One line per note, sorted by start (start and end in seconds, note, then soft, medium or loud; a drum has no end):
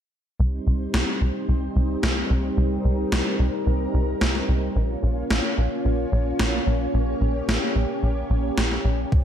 0.39 0.60 C2 medium
0.39 4.72 G3 medium
0.39 4.72 C4 medium
0.39 4.72 D#4 medium
0.39 2.56 C5 medium
0.67 0.87 C2 medium
0.94 1.04 C2 medium
0.94 snare loud
1.21 1.32 C2 medium
1.49 1.69 C2 medium
1.76 1.96 C2 medium
2.03 2.24 C2 medium
2.03 snare loud
2.30 2.51 C2 medium
2.57 2.78 C2 loud
2.57 4.74 A#4 medium
2.85 3.05 C2 medium
3.12 3.22 C2 medium
3.12 snare loud
3.39 3.50 C2 medium
3.67 3.87 C2 medium
3.94 4.15 C2 loud
4.21 4.42 C2 medium
4.21 snare loud
4.35 snare soft
4.49 4.69 C2 medium
4.76 4.96 A#1 medium
4.76 9.08 A#3 medium
4.76 9.08 C#4 medium
4.76 6.92 F4 medium
4.76 9.08 C#5 medium
5.03 5.24 A#1 medium
5.30 5.41 A#1 medium
5.30 snare loud
5.58 5.68 A#1 medium
5.85 6.06 A#1 medium
6.12 6.33 A#1 medium
6.39 6.60 A#1 medium
6.39 snare loud
6.67 6.87 A#1 medium
6.94 7.15 A#1 loud
6.94 9.10 G4 medium
7.21 7.42 A#1 medium
7.48 7.59 A#1 medium
7.48 snare loud
7.76 7.86 A#1 medium
8.03 8.24 A#1 medium
8.30 8.51 A#1 medium
8.58 8.78 A#1 medium
8.58 snare loud
8.71 snare soft
8.85 9.05 A#1 medium
9.12 9.24 C2 loud
9.12 9.24 G3 medium
9.12 9.24 C4 medium
9.12 9.24 D#4 medium
9.12 9.24 C5 medium
9.12 kick loud